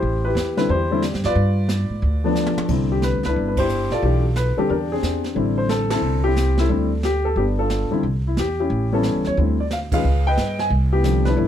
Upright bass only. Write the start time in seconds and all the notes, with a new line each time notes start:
0.02 A1
0.35 E2
0.69 E2
1.14 G2
1.24 F#2
1.35 G2
1.90 G#2
2.02 D2
2.56 muted upright bass stroke
2.69 C2
3.13 D2
3.25 C#2
3.36 G1
3.90 A#1
4.02 B1
4.58 muted upright bass stroke
4.69 E2
5.02 E2
5.36 A1
6.02 C2
6.69 D2
7.36 G1
7.91 muted upright bass stroke
8.03 C2
8.37 E2
8.70 A1
9.15 C#2
9.26 D#2
9.37 D2
10.04 C#2
10.37 G2
10.70 C2
11.37 G1